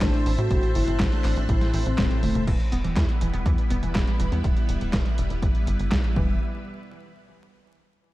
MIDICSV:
0, 0, Header, 1, 7, 480
1, 0, Start_track
1, 0, Key_signature, 1, "minor"
1, 0, Tempo, 491803
1, 495, Time_signature, 4, 2, 24, 8
1, 7943, End_track
2, 0, Start_track
2, 0, Title_t, "String machine"
2, 0, Program_c, 0, 50
2, 0, Note_on_c, 0, 72, 80
2, 0, Note_on_c, 0, 76, 72
2, 0, Note_on_c, 0, 81, 74
2, 0, Note_on_c, 0, 88, 89
2, 475, Note_off_c, 0, 88, 0
2, 494, Note_on_c, 0, 90, 88
2, 2376, Note_off_c, 0, 72, 0
2, 2376, Note_off_c, 0, 76, 0
2, 2376, Note_off_c, 0, 81, 0
2, 2395, Note_off_c, 0, 90, 0
2, 2414, Note_on_c, 0, 59, 69
2, 2414, Note_on_c, 0, 64, 73
2, 2415, Note_on_c, 0, 55, 78
2, 2415, Note_on_c, 0, 71, 87
2, 5978, Note_off_c, 0, 59, 0
2, 5978, Note_off_c, 0, 64, 0
2, 5979, Note_off_c, 0, 55, 0
2, 5979, Note_off_c, 0, 71, 0
2, 7943, End_track
3, 0, Start_track
3, 0, Title_t, "Soft synth lead"
3, 0, Program_c, 1, 80
3, 14, Note_on_c, 1, 62, 98
3, 322, Note_off_c, 1, 62, 0
3, 375, Note_on_c, 1, 66, 98
3, 683, Note_off_c, 1, 66, 0
3, 734, Note_on_c, 1, 64, 103
3, 1042, Note_off_c, 1, 64, 0
3, 1095, Note_on_c, 1, 62, 98
3, 1403, Note_off_c, 1, 62, 0
3, 1454, Note_on_c, 1, 64, 102
3, 1762, Note_off_c, 1, 64, 0
3, 1813, Note_on_c, 1, 60, 96
3, 2122, Note_off_c, 1, 60, 0
3, 2174, Note_on_c, 1, 57, 95
3, 2380, Note_off_c, 1, 57, 0
3, 6016, Note_on_c, 1, 55, 92
3, 6194, Note_off_c, 1, 55, 0
3, 7943, End_track
4, 0, Start_track
4, 0, Title_t, "Analog polysynth"
4, 0, Program_c, 2, 90
4, 0, Note_on_c, 2, 45, 98
4, 0, Note_on_c, 2, 57, 90
4, 0, Note_on_c, 2, 60, 89
4, 0, Note_on_c, 2, 64, 88
4, 0, Note_on_c, 2, 72, 109
4, 464, Note_off_c, 2, 60, 0
4, 464, Note_off_c, 2, 72, 0
4, 465, Note_off_c, 2, 45, 0
4, 465, Note_off_c, 2, 57, 0
4, 465, Note_off_c, 2, 64, 0
4, 492, Note_on_c, 2, 57, 86
4, 492, Note_on_c, 2, 60, 85
4, 492, Note_on_c, 2, 64, 86
4, 493, Note_on_c, 2, 45, 95
4, 493, Note_on_c, 2, 72, 104
4, 1665, Note_off_c, 2, 45, 0
4, 1665, Note_off_c, 2, 57, 0
4, 1665, Note_off_c, 2, 60, 0
4, 1665, Note_off_c, 2, 64, 0
4, 1665, Note_off_c, 2, 72, 0
4, 1695, Note_on_c, 2, 57, 83
4, 1695, Note_on_c, 2, 60, 84
4, 1696, Note_on_c, 2, 45, 93
4, 1696, Note_on_c, 2, 64, 84
4, 1696, Note_on_c, 2, 72, 100
4, 1865, Note_off_c, 2, 45, 0
4, 1865, Note_off_c, 2, 57, 0
4, 1865, Note_off_c, 2, 60, 0
4, 1865, Note_off_c, 2, 64, 0
4, 1865, Note_off_c, 2, 72, 0
4, 1934, Note_on_c, 2, 45, 101
4, 1934, Note_on_c, 2, 57, 92
4, 1934, Note_on_c, 2, 60, 92
4, 1934, Note_on_c, 2, 64, 92
4, 1934, Note_on_c, 2, 72, 110
4, 2385, Note_off_c, 2, 60, 0
4, 2386, Note_off_c, 2, 45, 0
4, 2386, Note_off_c, 2, 57, 0
4, 2386, Note_off_c, 2, 64, 0
4, 2386, Note_off_c, 2, 72, 0
4, 7943, End_track
5, 0, Start_track
5, 0, Title_t, "Synth arpeggio sound"
5, 0, Program_c, 3, 84
5, 2416, Note_on_c, 3, 52, 102
5, 2479, Note_off_c, 3, 52, 0
5, 2655, Note_on_c, 3, 59, 101
5, 2719, Note_off_c, 3, 59, 0
5, 2776, Note_on_c, 3, 52, 79
5, 2881, Note_off_c, 3, 52, 0
5, 2895, Note_on_c, 3, 64, 82
5, 3001, Note_off_c, 3, 64, 0
5, 3137, Note_on_c, 3, 52, 78
5, 3250, Note_off_c, 3, 52, 0
5, 3255, Note_on_c, 3, 59, 101
5, 3369, Note_off_c, 3, 59, 0
5, 3376, Note_on_c, 3, 52, 99
5, 3439, Note_off_c, 3, 52, 0
5, 3617, Note_on_c, 3, 59, 104
5, 3679, Note_off_c, 3, 59, 0
5, 3736, Note_on_c, 3, 52, 75
5, 3842, Note_off_c, 3, 52, 0
5, 3857, Note_on_c, 3, 64, 81
5, 3962, Note_off_c, 3, 64, 0
5, 4096, Note_on_c, 3, 52, 80
5, 4209, Note_off_c, 3, 52, 0
5, 4216, Note_on_c, 3, 59, 100
5, 4329, Note_off_c, 3, 59, 0
5, 6017, Note_on_c, 3, 52, 97
5, 6239, Note_off_c, 3, 52, 0
5, 7943, End_track
6, 0, Start_track
6, 0, Title_t, "Analog synth bass"
6, 0, Program_c, 4, 38
6, 13, Note_on_c, 4, 33, 105
6, 119, Note_off_c, 4, 33, 0
6, 254, Note_on_c, 4, 33, 96
6, 359, Note_off_c, 4, 33, 0
6, 374, Note_on_c, 4, 45, 81
6, 479, Note_off_c, 4, 45, 0
6, 493, Note_on_c, 4, 31, 103
6, 599, Note_off_c, 4, 31, 0
6, 735, Note_on_c, 4, 31, 98
6, 839, Note_off_c, 4, 31, 0
6, 853, Note_on_c, 4, 31, 83
6, 959, Note_off_c, 4, 31, 0
6, 973, Note_on_c, 4, 33, 107
6, 1079, Note_off_c, 4, 33, 0
6, 1215, Note_on_c, 4, 33, 97
6, 1320, Note_off_c, 4, 33, 0
6, 1335, Note_on_c, 4, 33, 82
6, 1440, Note_off_c, 4, 33, 0
6, 1453, Note_on_c, 4, 33, 104
6, 1559, Note_off_c, 4, 33, 0
6, 1694, Note_on_c, 4, 33, 96
6, 1799, Note_off_c, 4, 33, 0
6, 1815, Note_on_c, 4, 33, 83
6, 1920, Note_off_c, 4, 33, 0
6, 1934, Note_on_c, 4, 28, 103
6, 2039, Note_off_c, 4, 28, 0
6, 2175, Note_on_c, 4, 28, 96
6, 2280, Note_off_c, 4, 28, 0
6, 2297, Note_on_c, 4, 28, 84
6, 2401, Note_off_c, 4, 28, 0
6, 2414, Note_on_c, 4, 28, 103
6, 2519, Note_off_c, 4, 28, 0
6, 2655, Note_on_c, 4, 28, 93
6, 2760, Note_off_c, 4, 28, 0
6, 2775, Note_on_c, 4, 28, 80
6, 2880, Note_off_c, 4, 28, 0
6, 2894, Note_on_c, 4, 40, 103
6, 2999, Note_off_c, 4, 40, 0
6, 3135, Note_on_c, 4, 28, 93
6, 3240, Note_off_c, 4, 28, 0
6, 3255, Note_on_c, 4, 28, 82
6, 3360, Note_off_c, 4, 28, 0
6, 3374, Note_on_c, 4, 40, 101
6, 3479, Note_off_c, 4, 40, 0
6, 3618, Note_on_c, 4, 28, 96
6, 3721, Note_off_c, 4, 28, 0
6, 3737, Note_on_c, 4, 28, 83
6, 3840, Note_off_c, 4, 28, 0
6, 3855, Note_on_c, 4, 28, 102
6, 3959, Note_off_c, 4, 28, 0
6, 4095, Note_on_c, 4, 28, 95
6, 4200, Note_off_c, 4, 28, 0
6, 4216, Note_on_c, 4, 40, 82
6, 4320, Note_off_c, 4, 40, 0
6, 4335, Note_on_c, 4, 26, 103
6, 4440, Note_off_c, 4, 26, 0
6, 4575, Note_on_c, 4, 26, 94
6, 4680, Note_off_c, 4, 26, 0
6, 4695, Note_on_c, 4, 26, 82
6, 4800, Note_off_c, 4, 26, 0
6, 4815, Note_on_c, 4, 28, 104
6, 4920, Note_off_c, 4, 28, 0
6, 5056, Note_on_c, 4, 28, 93
6, 5160, Note_off_c, 4, 28, 0
6, 5173, Note_on_c, 4, 28, 81
6, 5279, Note_off_c, 4, 28, 0
6, 5295, Note_on_c, 4, 31, 105
6, 5400, Note_off_c, 4, 31, 0
6, 5535, Note_on_c, 4, 31, 91
6, 5640, Note_off_c, 4, 31, 0
6, 5657, Note_on_c, 4, 31, 82
6, 5761, Note_off_c, 4, 31, 0
6, 5775, Note_on_c, 4, 35, 103
6, 5880, Note_off_c, 4, 35, 0
6, 6015, Note_on_c, 4, 28, 98
6, 6238, Note_off_c, 4, 28, 0
6, 7943, End_track
7, 0, Start_track
7, 0, Title_t, "Drums"
7, 13, Note_on_c, 9, 36, 115
7, 14, Note_on_c, 9, 38, 119
7, 14, Note_on_c, 9, 39, 93
7, 14, Note_on_c, 9, 42, 70
7, 110, Note_off_c, 9, 36, 0
7, 112, Note_off_c, 9, 38, 0
7, 112, Note_off_c, 9, 39, 0
7, 112, Note_off_c, 9, 42, 0
7, 134, Note_on_c, 9, 42, 42
7, 232, Note_off_c, 9, 42, 0
7, 254, Note_on_c, 9, 46, 115
7, 352, Note_off_c, 9, 46, 0
7, 375, Note_on_c, 9, 42, 43
7, 472, Note_off_c, 9, 42, 0
7, 493, Note_on_c, 9, 36, 116
7, 494, Note_on_c, 9, 42, 72
7, 591, Note_off_c, 9, 36, 0
7, 592, Note_off_c, 9, 42, 0
7, 614, Note_on_c, 9, 42, 43
7, 712, Note_off_c, 9, 42, 0
7, 733, Note_on_c, 9, 46, 112
7, 831, Note_off_c, 9, 46, 0
7, 854, Note_on_c, 9, 42, 43
7, 952, Note_off_c, 9, 42, 0
7, 973, Note_on_c, 9, 36, 115
7, 973, Note_on_c, 9, 38, 117
7, 973, Note_on_c, 9, 39, 95
7, 973, Note_on_c, 9, 42, 71
7, 1071, Note_off_c, 9, 36, 0
7, 1071, Note_off_c, 9, 38, 0
7, 1071, Note_off_c, 9, 39, 0
7, 1071, Note_off_c, 9, 42, 0
7, 1094, Note_on_c, 9, 42, 41
7, 1192, Note_off_c, 9, 42, 0
7, 1215, Note_on_c, 9, 39, 76
7, 1215, Note_on_c, 9, 46, 114
7, 1312, Note_off_c, 9, 39, 0
7, 1312, Note_off_c, 9, 46, 0
7, 1335, Note_on_c, 9, 42, 43
7, 1432, Note_off_c, 9, 42, 0
7, 1453, Note_on_c, 9, 36, 117
7, 1454, Note_on_c, 9, 42, 74
7, 1551, Note_off_c, 9, 36, 0
7, 1552, Note_off_c, 9, 42, 0
7, 1575, Note_on_c, 9, 38, 37
7, 1575, Note_on_c, 9, 42, 44
7, 1672, Note_off_c, 9, 38, 0
7, 1672, Note_off_c, 9, 42, 0
7, 1694, Note_on_c, 9, 46, 109
7, 1792, Note_off_c, 9, 46, 0
7, 1815, Note_on_c, 9, 42, 44
7, 1913, Note_off_c, 9, 42, 0
7, 1934, Note_on_c, 9, 36, 120
7, 1935, Note_on_c, 9, 38, 123
7, 1935, Note_on_c, 9, 39, 96
7, 1935, Note_on_c, 9, 42, 71
7, 2031, Note_off_c, 9, 36, 0
7, 2033, Note_off_c, 9, 38, 0
7, 2033, Note_off_c, 9, 39, 0
7, 2033, Note_off_c, 9, 42, 0
7, 2056, Note_on_c, 9, 42, 42
7, 2154, Note_off_c, 9, 42, 0
7, 2175, Note_on_c, 9, 46, 111
7, 2175, Note_on_c, 9, 48, 63
7, 2273, Note_off_c, 9, 46, 0
7, 2273, Note_off_c, 9, 48, 0
7, 2296, Note_on_c, 9, 42, 42
7, 2296, Note_on_c, 9, 47, 75
7, 2393, Note_off_c, 9, 42, 0
7, 2393, Note_off_c, 9, 47, 0
7, 2414, Note_on_c, 9, 36, 116
7, 2416, Note_on_c, 9, 42, 67
7, 2416, Note_on_c, 9, 49, 97
7, 2512, Note_off_c, 9, 36, 0
7, 2513, Note_off_c, 9, 42, 0
7, 2513, Note_off_c, 9, 49, 0
7, 2536, Note_on_c, 9, 42, 41
7, 2634, Note_off_c, 9, 42, 0
7, 2656, Note_on_c, 9, 42, 95
7, 2754, Note_off_c, 9, 42, 0
7, 2776, Note_on_c, 9, 42, 42
7, 2874, Note_off_c, 9, 42, 0
7, 2894, Note_on_c, 9, 36, 114
7, 2895, Note_on_c, 9, 38, 116
7, 2895, Note_on_c, 9, 39, 91
7, 2895, Note_on_c, 9, 42, 69
7, 2992, Note_off_c, 9, 36, 0
7, 2993, Note_off_c, 9, 38, 0
7, 2993, Note_off_c, 9, 39, 0
7, 2993, Note_off_c, 9, 42, 0
7, 3016, Note_on_c, 9, 42, 40
7, 3114, Note_off_c, 9, 42, 0
7, 3135, Note_on_c, 9, 42, 101
7, 3233, Note_off_c, 9, 42, 0
7, 3256, Note_on_c, 9, 42, 41
7, 3353, Note_off_c, 9, 42, 0
7, 3374, Note_on_c, 9, 36, 115
7, 3376, Note_on_c, 9, 42, 70
7, 3472, Note_off_c, 9, 36, 0
7, 3473, Note_off_c, 9, 42, 0
7, 3496, Note_on_c, 9, 42, 41
7, 3594, Note_off_c, 9, 42, 0
7, 3615, Note_on_c, 9, 42, 96
7, 3713, Note_off_c, 9, 42, 0
7, 3736, Note_on_c, 9, 42, 40
7, 3834, Note_off_c, 9, 42, 0
7, 3855, Note_on_c, 9, 36, 119
7, 3857, Note_on_c, 9, 38, 120
7, 3857, Note_on_c, 9, 39, 92
7, 3857, Note_on_c, 9, 42, 69
7, 3952, Note_off_c, 9, 36, 0
7, 3954, Note_off_c, 9, 38, 0
7, 3954, Note_off_c, 9, 39, 0
7, 3954, Note_off_c, 9, 42, 0
7, 3976, Note_on_c, 9, 42, 42
7, 4074, Note_off_c, 9, 42, 0
7, 4096, Note_on_c, 9, 42, 96
7, 4193, Note_off_c, 9, 42, 0
7, 4217, Note_on_c, 9, 42, 40
7, 4314, Note_off_c, 9, 42, 0
7, 4335, Note_on_c, 9, 36, 123
7, 4336, Note_on_c, 9, 42, 67
7, 4432, Note_off_c, 9, 36, 0
7, 4433, Note_off_c, 9, 42, 0
7, 4456, Note_on_c, 9, 42, 40
7, 4554, Note_off_c, 9, 42, 0
7, 4575, Note_on_c, 9, 42, 95
7, 4673, Note_off_c, 9, 42, 0
7, 4696, Note_on_c, 9, 42, 41
7, 4794, Note_off_c, 9, 42, 0
7, 4815, Note_on_c, 9, 36, 118
7, 4816, Note_on_c, 9, 38, 124
7, 4816, Note_on_c, 9, 39, 93
7, 4816, Note_on_c, 9, 42, 67
7, 4913, Note_off_c, 9, 36, 0
7, 4913, Note_off_c, 9, 38, 0
7, 4913, Note_off_c, 9, 39, 0
7, 4913, Note_off_c, 9, 42, 0
7, 4936, Note_on_c, 9, 42, 39
7, 5033, Note_off_c, 9, 42, 0
7, 5056, Note_on_c, 9, 42, 95
7, 5153, Note_off_c, 9, 42, 0
7, 5176, Note_on_c, 9, 42, 40
7, 5274, Note_off_c, 9, 42, 0
7, 5295, Note_on_c, 9, 36, 122
7, 5296, Note_on_c, 9, 42, 69
7, 5393, Note_off_c, 9, 36, 0
7, 5393, Note_off_c, 9, 42, 0
7, 5415, Note_on_c, 9, 42, 41
7, 5513, Note_off_c, 9, 42, 0
7, 5536, Note_on_c, 9, 42, 93
7, 5633, Note_off_c, 9, 42, 0
7, 5655, Note_on_c, 9, 42, 39
7, 5753, Note_off_c, 9, 42, 0
7, 5775, Note_on_c, 9, 36, 121
7, 5775, Note_on_c, 9, 38, 127
7, 5775, Note_on_c, 9, 39, 94
7, 5775, Note_on_c, 9, 42, 68
7, 5873, Note_off_c, 9, 36, 0
7, 5873, Note_off_c, 9, 38, 0
7, 5873, Note_off_c, 9, 39, 0
7, 5873, Note_off_c, 9, 42, 0
7, 5895, Note_on_c, 9, 42, 40
7, 5993, Note_off_c, 9, 42, 0
7, 6015, Note_on_c, 9, 36, 116
7, 6113, Note_off_c, 9, 36, 0
7, 7943, End_track
0, 0, End_of_file